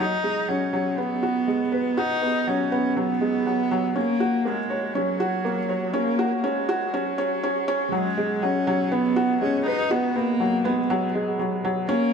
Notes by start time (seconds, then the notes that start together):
0.00 F#3 D#4
0.24 G#3
0.48 F#3 C#4
0.73 F#3
0.98 B3
1.23 F#4
1.48 G#3
1.72 B4
1.97 D#4 F#4
2.22 B3
2.47 F#3 C#4
2.72 B3
2.96 F#3 B3
3.21 G#3
3.46 F#3
3.71 F#3
3.96 A#3 C#4
4.20 F#4
4.45 G#3 A#3
4.70 C#5
4.95 F#3 C#4
5.20 F#4
5.45 A#3
5.69 C#5
5.93 A#3 C#4
6.19 F#4
6.36 A#3
6.44 G#3 C#4
6.69 F#4
6.94 F#3 C#4
7.18 C#4
7.43 C#4
7.68 C#4
7.92 F#3 G#3
8.17 G#3
8.42 F#3 C#4
8.67 F#3
8.92 B3
9.16 F#4
9.41 G#3 C#4
9.66 D#4 B4
9.91 B3 F#4
10.16 A#3 B3
10.40 F#3
10.65 G#3 B3
10.90 F#3
11.15 G#3
11.39 F#3
11.65 F#3
11.89 A#3 C#4